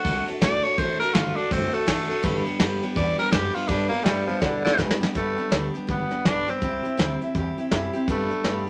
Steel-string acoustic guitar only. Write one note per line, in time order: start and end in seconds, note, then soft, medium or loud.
0.06 0.28 A3 medium
0.06 0.28 D4 medium
0.06 0.27 F#4 medium
0.06 0.26 A4 medium
0.27 0.41 D4 soft
0.27 0.41 F#4 soft
0.27 0.41 A4 medium
0.41 0.63 D3 medium
0.41 0.64 A3 medium
0.41 0.64 D4 medium
0.41 0.64 F#4 medium
0.41 0.62 A4 medium
0.63 0.78 D4 soft
0.63 0.78 F#4 medium
0.63 0.77 A4 medium
0.78 1.00 D3 medium
0.78 1.00 A3 medium
0.78 1.01 D4 medium
0.78 1.01 F#4 medium
0.78 0.99 A4 medium
1.00 1.13 D4 soft
1.00 1.13 F#4 soft
1.00 1.14 A4 medium
1.14 1.36 D3 medium
1.14 1.36 A3 medium
1.14 1.37 D4 medium
1.14 1.37 F#4 medium
1.14 1.35 A4 medium
1.36 1.52 D4 soft
1.36 1.51 F#4 medium
1.36 1.51 A4 medium
1.51 1.73 A3 medium
1.51 1.74 D4 medium
1.51 1.73 F#4 medium
1.51 1.71 A4 medium
1.73 1.86 D4 soft
1.73 1.86 F#4 soft
1.73 1.87 A4 medium
1.86 2.09 D3 medium
1.86 2.09 A3 medium
1.86 2.10 D4 medium
1.86 2.09 F#4 medium
1.86 2.08 A4 loud
2.09 2.23 D4 medium
2.09 2.24 F#4 medium
2.09 2.23 A4 medium
2.23 2.45 G2 loud
2.23 2.46 D3 medium
2.23 2.46 G3 medium
2.23 2.45 B3 medium
2.23 2.44 D4 loud
2.23 2.44 G4 loud
2.45 2.59 G3 medium
2.45 2.59 B3 soft
2.45 2.60 D4 medium
2.45 2.59 G4 medium
2.60 2.82 G2 medium
2.60 2.82 D3 medium
2.60 2.83 G3 loud
2.60 2.82 B3 medium
2.60 2.82 D4 medium
2.60 2.81 G4 loud
2.82 2.94 G3 medium
2.82 2.95 B3 medium
2.82 2.96 D4 soft
2.82 2.96 G4 medium
2.95 3.18 G3 medium
2.95 3.19 B3 medium
2.95 3.18 D4 medium
2.95 3.17 G4 medium
3.18 3.31 G3 soft
3.18 3.32 B3 medium
3.18 3.32 D4 medium
3.18 3.32 G4 medium
3.31 3.54 G2 medium
3.31 3.54 D3 medium
3.31 3.55 G3 medium
3.31 3.54 B3 medium
3.31 3.53 D4 medium
3.31 3.52 G4 medium
3.54 3.67 G3 soft
3.54 3.68 B3 medium
3.54 3.68 D4 medium
3.54 3.68 G4 medium
3.67 3.91 G2 medium
3.67 3.91 D3 medium
3.67 3.91 G3 medium
3.67 3.91 B3 medium
3.67 3.90 D4 medium
3.67 3.89 G4 medium
3.90 4.05 B3 soft
3.90 4.05 D4 soft
3.90 4.05 G4 soft
4.04 4.27 G2 medium
4.04 4.28 D3 medium
4.04 4.28 G3 medium
4.04 4.28 B3 medium
4.04 4.27 D4 loud
4.04 4.26 G4 medium
4.27 4.39 G3 soft
4.27 4.40 B3 soft
4.27 4.41 D4 medium
4.27 4.42 G4 soft
4.40 4.63 G3 medium
4.40 4.64 B3 medium
4.40 4.64 D4 medium
4.40 4.63 G4 medium
4.64 4.77 G3 medium
4.64 4.78 B3 medium
4.64 4.78 D4 soft
4.64 4.78 G4 medium
4.77 5.00 G2 medium
4.77 5.01 D3 medium
4.77 5.01 G3 medium
4.77 5.01 B3 loud
4.77 5.00 D4 medium
4.77 4.99 G4 medium
5.00 5.14 G3 medium
5.00 5.15 B3 medium
5.00 5.14 D4 medium
5.00 5.15 G4 medium
5.14 5.37 G2 medium
5.14 5.37 D3 medium
5.14 5.37 G3 medium
5.14 5.38 B3 medium
5.14 5.37 D4 medium
5.14 5.35 G4 medium
5.37 5.50 G3 soft
5.37 5.51 B3 soft
5.37 5.51 D4 soft
5.37 5.51 G4 medium
5.50 5.73 G2 medium
5.50 5.74 D3 medium
5.50 5.74 G3 medium
5.50 5.74 B3 medium
5.50 5.74 D4 medium
5.50 5.73 G4 medium
5.74 5.86 G3 soft
5.74 5.87 B3 medium
5.74 5.88 D4 soft
5.74 5.88 G4 medium
5.87 6.10 G3 medium
5.87 6.11 B3 medium
5.87 6.10 D4 medium
5.87 6.09 G4 medium
6.10 6.25 G3 soft
6.10 6.25 B3 soft
6.10 6.25 D4 medium
6.10 6.25 G4 medium
6.25 6.47 G2 medium
6.25 6.48 D3 medium
6.25 6.48 G3 medium
6.25 6.48 B3 medium
6.25 6.46 D4 medium
6.25 6.45 G4 medium
6.47 6.61 G3 soft
6.47 6.62 B3 soft
6.47 6.62 D4 medium
6.47 6.61 G4 medium
6.61 6.84 C3 medium
6.61 6.84 G3 medium
6.61 6.84 C4 medium
6.61 6.84 E4 medium
6.61 6.82 G4 medium
6.83 6.98 C4 soft
6.83 6.97 E4 soft
6.83 6.98 G4 soft
6.97 7.20 C3 medium
6.97 7.20 G3 medium
6.97 7.21 C4 loud
6.97 7.21 E4 loud
6.97 7.20 G4 medium
7.21 7.35 C4 soft
7.21 7.35 E4 medium
7.21 7.35 G4 medium
7.34 7.57 G3 medium
7.34 7.58 C4 medium
7.34 7.58 E4 medium
7.34 7.57 G4 medium
7.58 7.71 C4 soft
7.58 7.72 E4 medium
7.58 7.72 G4 medium
7.71 7.94 C3 medium
7.71 7.94 G3 medium
7.71 7.94 C4 loud
7.71 7.93 E4 loud
7.71 7.92 G4 medium
7.93 8.09 C4 medium
7.93 8.08 E4 medium
7.93 8.08 G4 medium
8.08 8.30 G2 medium
8.08 8.31 D3 medium
8.08 8.31 G3 medium
8.08 8.30 B3 medium
8.08 8.29 D4 medium
8.08 8.28 G4 medium
8.29 8.43 G3 soft
8.29 8.43 B3 soft
8.29 8.44 D4 soft
8.29 8.44 G4 soft
8.44 8.67 G2 medium
8.44 8.67 D3 medium
8.44 8.67 G3 medium
8.44 8.67 B3 medium
8.44 8.67 D4 medium
8.44 8.66 G4 medium